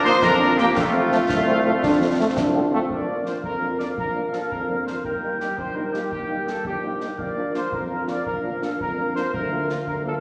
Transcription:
Already playing: A#1 F4
0.04 F3 A#3 D4 D#4 C5 C6, snare
0.22 F2 D4 A#4 A#5, concert bass drum, snare
0.40 F3 A#3 D4
0.58 F3 A#3 D4 G4 G5, snare
0.75 F2 A3 C4 F4 F5, concert bass drum, snare, crash
0.94 F3 A3 C4
1.11 F3 A3 C4, snare
1.29 C2 A3, concert bass drum, snare
1.47 F3 A3 C4
1.65 F3 A3 C4
1.82 F2 D4, concert bass drum, snare
2.01 F3 A3 C4
2.18 F3 A3 C4
2.36 C2 D4, concert bass drum, snare
2.54 F3 A3 C4
2.72 F3 A3 C4
2.90 A#1 A#4 D5 F5, concert bass drum
3.08 F3 A#3 D4
3.26 F3 A#3 D4 C5, snare
3.43 F2 A#4, concert bass drum
3.62 F3 A#3 D4
3.78 F3 A#3 D4 D5, snare
3.97 A#1 A#4, concert bass drum
4.15 F3 A#3 D4
4.33 F3 A#3 D4 A4, snare
4.50 F2 A#4, concert bass drum
4.69 F3 A#3 D4
4.87 F3 A#3 D4 C5, snare
5.04 D#2 A#4 G5, concert bass drum
5.23 G3 A#3 D#4
5.40 G3 A#3 D#4 G4, snare
5.57 A#1 C5, concert bass drum
5.75 G3 A#3 D#4 A#4
5.93 G3 A#3 D#4 G4, snare
6.10 D#2 G4, concert bass drum
6.29 G3 A#3 D#4
6.47 G3 A#3 D#4 A4, snare
6.65 A#1 G4, concert bass drum
6.83 G3 A#3 D#4
7.01 G3 A#3 D#4, snare
7.18 A#1 A#4 D5 F5, concert bass drum
7.36 F3 A#3 D4
7.54 F3 A#3 D4 C5, snare
7.72 F2 A#4, concert bass drum
7.91 F3 A#3 D4
8.08 F3 A#3 D4 D5, snare
8.26 A#1 A#4, concert bass drum
8.44 F3 A#3 D4
8.61 F3 A#3 D4 A4, snare
8.80 F2 A#4, concert bass drum
8.97 F3 A#3 D4
9.15 F3 A#3 D4 C5, snare
9.33 D2 A#4 F5, concert bass drum
9.52 F3 A#3 D4
9.69 F3 A#3 D4 F4, snare
9.87 D2 A#4, concert bass drum
10.05 F3 A#3 D4 A4

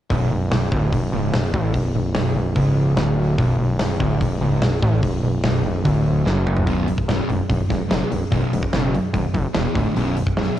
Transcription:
0.10 B0 B1, kick, open hi-hat
0.31 B0 B1
0.51 B0 B1, snare, open hi-hat
0.72 D1 D2, kick
0.92 B0 B1, kick, open hi-hat
1.12 C#1 C#2
1.33 B0 B1, snare, open hi-hat
1.54 A1 A2, kick
1.74 B0 B1, kick, open hi-hat
1.95 B0 B1
2.15 B0 B1, snare, open hi-hat
2.35 B0 B1
2.56 C#1 C#2, kick, open hi-hat
2.97 D1 D2, snare, open hi-hat
3.38 B0 B1, kick, open hi-hat
3.59 B0 B1
3.79 B0 B1, snare, open hi-hat
4.00 D1 D2, kick
4.21 B0 B1, kick, open hi-hat
4.41 C#1 C#2
4.62 B0 B1, snare, open hi-hat
4.82 A1 A2, kick
5.03 B0 B1, kick, open hi-hat
5.23 B0 B1
5.44 B0 B1, snare, open hi-hat
5.65 B0 B1
5.85 D1 D2, kick, open hi-hat
6.26 F#1 F#2, snare
6.47 mid tom
6.56 floor tom
6.66 B0 B1 F#2 B2, kick, open hi-hat
6.88 B1 F#2, open hi-hat
6.98 kick
7.08 B0 B1 F#2 B2, snare, open hi-hat
7.29 B0 B1 F#2, open hi-hat
7.49 B0 B1 F#2, kick, open hi-hat
7.69 B0 B1 F#2, kick, snare, open hi-hat
7.89 F#1 B1 F#2 B2, snare, open hi-hat
8.11 B0 B1 F#2, open hi-hat
8.31 B0 B1 F#2 B2, kick, open hi-hat
8.53 B0 B1 F#2, open hi-hat
8.63 kick
8.73 F#1 B1 F#2 B2, snare, open hi-hat
8.93 B1 F#2, open hi-hat
9.14 B0 B1 F#2, kick, open hi-hat
9.34 F#1 B1 F#2, kick, open hi-hat
9.54 E1 E2 B2 E3, snare, open hi-hat
9.75 D1 D2 A2 D3, kick, open hi-hat
9.95 B0 B1 F#2 B2, open hi-hat
10.16 B1 F#2, open hi-hat
10.27 kick
10.37 B0 B1 F#2 B2, snare, open hi-hat

